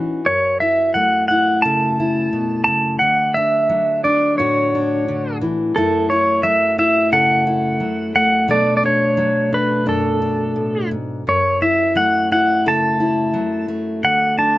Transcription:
Already playing: steel-string acoustic guitar E3 C#4 D#4 F#4
0.26 steel-string acoustic guitar F#2, pedal steel guitar C#5
0.60 steel-string acoustic guitar E4, pedal steel guitar E5
0.94 steel-string acoustic guitar F#3 A3, pedal steel guitar F#5
1.28 steel-string acoustic guitar E4, pedal steel guitar F#5
1.62 steel-string acoustic guitar C#3 A4, pedal steel guitar A5
2.00 steel-string acoustic guitar E4
2.33 steel-string acoustic guitar B2
2.64 steel-string acoustic guitar C#3, pedal steel guitar A5
2.99 steel-string acoustic guitar D3, pedal steel guitar F#5
3.34 steel-string acoustic guitar D4, pedal steel guitar E5
3.69 steel-string acoustic guitar F#3
4.04 steel-string acoustic guitar D4, pedal steel guitar D5
4.38 steel-string acoustic guitar A2 F#4, pedal steel guitar C#5
4.75 steel-string acoustic guitar D4
5.08 steel-string acoustic guitar D3
5.41 steel-string acoustic guitar E3
5.76 steel-string acoustic guitar F#2 F#3 A3 E4, pedal steel guitar A4
6.10 steel-string acoustic guitar E4, pedal steel guitar C#5
6.43 steel-string acoustic guitar F#3 A3, pedal steel guitar E5
6.78 steel-string acoustic guitar E4, pedal steel guitar E5
7.12 steel-string acoustic guitar C#3 A4, pedal steel guitar F#5
7.47 steel-string acoustic guitar E4
7.80 steel-string acoustic guitar F#3
8.15 steel-string acoustic guitar A3, pedal steel guitar F#5
8.48 steel-string acoustic guitar B2 F#3 A3 D4 A4, pedal steel guitar D5
8.77 pedal steel guitar D5
8.83 steel-string acoustic guitar D4, pedal steel guitar C#5
9.17 steel-string acoustic guitar F#3
9.52 steel-string acoustic guitar D4, pedal steel guitar B4
9.86 steel-string acoustic guitar F#2 D4, pedal steel guitar A4
10.22 steel-string acoustic guitar D4
10.56 steel-string acoustic guitar A2
10.91 steel-string acoustic guitar G#2
11.27 steel-string acoustic guitar F#2, pedal steel guitar C#5
11.62 steel-string acoustic guitar E4, pedal steel guitar E5
11.95 steel-string acoustic guitar F#3 A3, pedal steel guitar F#5
12.32 steel-string acoustic guitar E4, pedal steel guitar F#5
12.66 steel-string acoustic guitar C#3 A4, pedal steel guitar A5
13.00 steel-string acoustic guitar E4
13.34 steel-string acoustic guitar F#3
13.68 steel-string acoustic guitar A3
14.03 steel-string acoustic guitar D3, pedal steel guitar F#5
14.38 steel-string acoustic guitar D4, pedal steel guitar A5

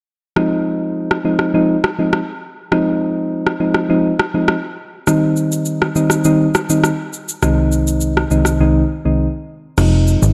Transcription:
0.36 synth keys F3 G#3 C4 D#4, cross-stick
1.11 cross-stick
1.24 synth keys F3 G#3 C4 D#4
1.39 cross-stick
1.54 synth keys F3 G#3 C4 D#4
1.84 cross-stick
1.99 synth keys F3 G#3 C4 D#4
2.13 cross-stick
2.72 synth keys F3 G#3 C4 D#4, cross-stick
3.47 cross-stick
3.60 synth keys F3 G#3 C4 D#4
3.74 cross-stick
3.89 synth keys F3 G#3 C4 D#4
4.19 cross-stick
4.34 synth keys F3 G#3 C4 D#4
4.48 cross-stick
5.07 synth keys D#3 G3 C4 D#4, cross-stick, shaker
5.36 shaker
5.52 shaker
5.65 shaker
5.82 cross-stick
5.95 synth keys D#3 G3 C4 D#4, shaker
6.10 cross-stick, shaker
6.24 synth keys D#3 G3 C4 D#4, shaker
6.54 cross-stick, shaker
6.69 synth keys D#3 G3 C4 D#4, shaker
6.84 cross-stick, shaker
7.13 shaker
7.29 shaker
7.42 synth keys C2 D#3 G#3 C4 D#4, cross-stick, shaker
7.72 shaker
7.87 shaker
8.01 shaker
8.17 cross-stick
8.31 synth keys C2 D#3 G#3 C4 D#4, shaker
8.45 cross-stick, shaker
8.60 synth keys C2 D#3 G#3 C4 D#4
9.05 synth keys C2 D#3 G#3 C4 D#4
9.78 analog synth bass F1, synth keys F3 G#3 C4 D#4, cross-stick, crash, shaker
10.07 shaker
10.22 analog synth bass G#1, shaker

